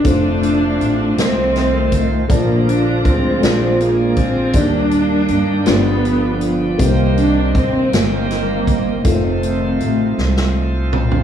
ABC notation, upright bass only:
X:1
M:6/8
L:1/8
Q:3/8=53
K:Fmix
V:1 name="Upright bass" clef=bass
F,,,2 A,,, C,,3 | B,,,2 D,, B,,,3 | E,,2 G,, G,,,3 | C,,2 E,, G,,,3 |
F,,,2 A,,, C,,3 |]